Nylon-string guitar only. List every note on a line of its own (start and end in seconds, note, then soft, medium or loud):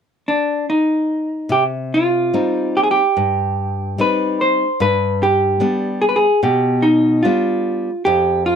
1.49 2.31 C3 medium
2.33 3.00 G3 soft
2.33 3.00 C4 soft
2.33 3.00 D#4 soft
3.17 3.96 G2 medium
3.98 4.63 G3 soft
3.98 4.64 C4 soft
3.98 4.64 D#4 soft
4.80 5.59 G2 medium
5.60 6.26 G3 soft
5.60 6.26 B3 soft
5.60 6.26 D4 soft
6.43 7.21 B2 medium
7.25 7.89 G3 soft
7.25 7.89 B3 soft
7.25 7.89 D4 soft
8.06 8.56 F2 medium